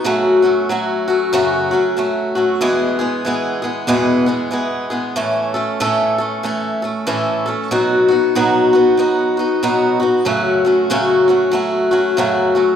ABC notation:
X:1
M:4/4
L:1/8
Q:"Swing" 1/4=94
K:A
V:1 name="Steel-string acoustic guitar"
[F,,C,F,A,CF] [F,A,CF] [F,A,CF] [F,A,CF] [F,,C,F,A,CF] [F,A,CF] [F,A,CF] [F,A,CF] | [E,,B,,E,G,B,G] [E,G,B,G] [E,G,B,G] [E,G,B,G] [E,,B,,E,G,B,G] [E,G,B,G] [E,G,B,G] [E,G,B,G] | [A,,E,A,CA] [A,CA] [A,,E,A,CA] [A,CA] [E,A,CA] [A,CA] [A,,E,A,CA] [A,CA] | [B,,F,B,^DF] [B,DF] [B,,F,B,DF] [B,DF] [F,B,DF] [B,DF] [B,,F,B,DF] [B,DF] |
[F,,C,F,A,CF] [F,A,CF] [F,,C,F,A,CF] [F,A,CF] [F,A,CF] [F,A,CF] [F,,C,F,A,CF] [F,A,CF] |]